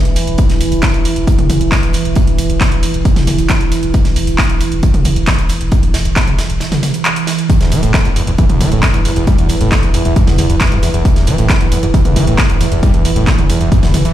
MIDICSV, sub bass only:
0, 0, Header, 1, 2, 480
1, 0, Start_track
1, 0, Tempo, 444444
1, 416, Time_signature, 4, 2, 24, 8
1, 15264, End_track
2, 0, Start_track
2, 0, Title_t, "Sub bass"
2, 0, Program_c, 0, 38
2, 55, Note_on_c, 0, 28, 75
2, 173, Note_off_c, 0, 28, 0
2, 296, Note_on_c, 0, 28, 84
2, 414, Note_off_c, 0, 28, 0
2, 535, Note_on_c, 0, 28, 78
2, 648, Note_off_c, 0, 28, 0
2, 655, Note_on_c, 0, 28, 101
2, 769, Note_off_c, 0, 28, 0
2, 776, Note_on_c, 0, 28, 79
2, 893, Note_off_c, 0, 28, 0
2, 1016, Note_on_c, 0, 28, 75
2, 1133, Note_off_c, 0, 28, 0
2, 1256, Note_on_c, 0, 28, 82
2, 1374, Note_off_c, 0, 28, 0
2, 1495, Note_on_c, 0, 28, 76
2, 1610, Note_off_c, 0, 28, 0
2, 1616, Note_on_c, 0, 28, 100
2, 1731, Note_off_c, 0, 28, 0
2, 1737, Note_on_c, 0, 28, 83
2, 1854, Note_off_c, 0, 28, 0
2, 1976, Note_on_c, 0, 28, 75
2, 2093, Note_off_c, 0, 28, 0
2, 2216, Note_on_c, 0, 28, 83
2, 2334, Note_off_c, 0, 28, 0
2, 2455, Note_on_c, 0, 28, 77
2, 2570, Note_off_c, 0, 28, 0
2, 2576, Note_on_c, 0, 28, 96
2, 2690, Note_off_c, 0, 28, 0
2, 2696, Note_on_c, 0, 28, 80
2, 2814, Note_off_c, 0, 28, 0
2, 2936, Note_on_c, 0, 28, 75
2, 3053, Note_off_c, 0, 28, 0
2, 3176, Note_on_c, 0, 28, 82
2, 3293, Note_off_c, 0, 28, 0
2, 3415, Note_on_c, 0, 28, 78
2, 3530, Note_off_c, 0, 28, 0
2, 3536, Note_on_c, 0, 28, 99
2, 3650, Note_off_c, 0, 28, 0
2, 3656, Note_on_c, 0, 28, 85
2, 3774, Note_off_c, 0, 28, 0
2, 3897, Note_on_c, 0, 28, 75
2, 4014, Note_off_c, 0, 28, 0
2, 4137, Note_on_c, 0, 28, 83
2, 4254, Note_off_c, 0, 28, 0
2, 4376, Note_on_c, 0, 28, 80
2, 4491, Note_off_c, 0, 28, 0
2, 4498, Note_on_c, 0, 28, 100
2, 4611, Note_off_c, 0, 28, 0
2, 4617, Note_on_c, 0, 28, 81
2, 4734, Note_off_c, 0, 28, 0
2, 4858, Note_on_c, 0, 28, 75
2, 4974, Note_off_c, 0, 28, 0
2, 5099, Note_on_c, 0, 28, 81
2, 5215, Note_off_c, 0, 28, 0
2, 5339, Note_on_c, 0, 28, 76
2, 5452, Note_off_c, 0, 28, 0
2, 5459, Note_on_c, 0, 28, 98
2, 5571, Note_off_c, 0, 28, 0
2, 5578, Note_on_c, 0, 28, 82
2, 5694, Note_off_c, 0, 28, 0
2, 5818, Note_on_c, 0, 28, 76
2, 5934, Note_off_c, 0, 28, 0
2, 6058, Note_on_c, 0, 28, 85
2, 6175, Note_off_c, 0, 28, 0
2, 6298, Note_on_c, 0, 28, 78
2, 6410, Note_off_c, 0, 28, 0
2, 6417, Note_on_c, 0, 28, 100
2, 6530, Note_off_c, 0, 28, 0
2, 6536, Note_on_c, 0, 28, 81
2, 6654, Note_off_c, 0, 28, 0
2, 6776, Note_on_c, 0, 28, 75
2, 6894, Note_off_c, 0, 28, 0
2, 7016, Note_on_c, 0, 28, 81
2, 7133, Note_off_c, 0, 28, 0
2, 8216, Note_on_c, 0, 28, 77
2, 8328, Note_off_c, 0, 28, 0
2, 8335, Note_on_c, 0, 28, 99
2, 8447, Note_off_c, 0, 28, 0
2, 8454, Note_on_c, 0, 28, 83
2, 8572, Note_off_c, 0, 28, 0
2, 8693, Note_on_c, 0, 28, 76
2, 8812, Note_off_c, 0, 28, 0
2, 8935, Note_on_c, 0, 28, 84
2, 9053, Note_off_c, 0, 28, 0
2, 9175, Note_on_c, 0, 28, 77
2, 9288, Note_off_c, 0, 28, 0
2, 9295, Note_on_c, 0, 28, 99
2, 9408, Note_off_c, 0, 28, 0
2, 9415, Note_on_c, 0, 28, 83
2, 9533, Note_off_c, 0, 28, 0
2, 9655, Note_on_c, 0, 28, 75
2, 9773, Note_off_c, 0, 28, 0
2, 9894, Note_on_c, 0, 28, 84
2, 10013, Note_off_c, 0, 28, 0
2, 10135, Note_on_c, 0, 28, 78
2, 10248, Note_off_c, 0, 28, 0
2, 10255, Note_on_c, 0, 28, 97
2, 10369, Note_off_c, 0, 28, 0
2, 10376, Note_on_c, 0, 28, 81
2, 10493, Note_off_c, 0, 28, 0
2, 10616, Note_on_c, 0, 28, 75
2, 10733, Note_off_c, 0, 28, 0
2, 10854, Note_on_c, 0, 28, 82
2, 10973, Note_off_c, 0, 28, 0
2, 11095, Note_on_c, 0, 28, 77
2, 11208, Note_off_c, 0, 28, 0
2, 11215, Note_on_c, 0, 28, 96
2, 11329, Note_off_c, 0, 28, 0
2, 11335, Note_on_c, 0, 28, 82
2, 11453, Note_off_c, 0, 28, 0
2, 11573, Note_on_c, 0, 28, 75
2, 11692, Note_off_c, 0, 28, 0
2, 11815, Note_on_c, 0, 28, 85
2, 11933, Note_off_c, 0, 28, 0
2, 12056, Note_on_c, 0, 28, 79
2, 12167, Note_off_c, 0, 28, 0
2, 12174, Note_on_c, 0, 28, 102
2, 12287, Note_off_c, 0, 28, 0
2, 12294, Note_on_c, 0, 28, 82
2, 12412, Note_off_c, 0, 28, 0
2, 12535, Note_on_c, 0, 28, 75
2, 12653, Note_off_c, 0, 28, 0
2, 12776, Note_on_c, 0, 28, 83
2, 12894, Note_off_c, 0, 28, 0
2, 13016, Note_on_c, 0, 28, 77
2, 13129, Note_off_c, 0, 28, 0
2, 13136, Note_on_c, 0, 28, 97
2, 13249, Note_off_c, 0, 28, 0
2, 13255, Note_on_c, 0, 28, 81
2, 13373, Note_off_c, 0, 28, 0
2, 13495, Note_on_c, 0, 28, 77
2, 13613, Note_off_c, 0, 28, 0
2, 13735, Note_on_c, 0, 28, 86
2, 13853, Note_off_c, 0, 28, 0
2, 13976, Note_on_c, 0, 28, 79
2, 14089, Note_off_c, 0, 28, 0
2, 14095, Note_on_c, 0, 28, 101
2, 14209, Note_off_c, 0, 28, 0
2, 14215, Note_on_c, 0, 28, 82
2, 14333, Note_off_c, 0, 28, 0
2, 14456, Note_on_c, 0, 28, 76
2, 14573, Note_off_c, 0, 28, 0
2, 14696, Note_on_c, 0, 28, 84
2, 14813, Note_off_c, 0, 28, 0
2, 14937, Note_on_c, 0, 28, 75
2, 15049, Note_off_c, 0, 28, 0
2, 15055, Note_on_c, 0, 28, 97
2, 15170, Note_off_c, 0, 28, 0
2, 15177, Note_on_c, 0, 28, 83
2, 15264, Note_off_c, 0, 28, 0
2, 15264, End_track
0, 0, End_of_file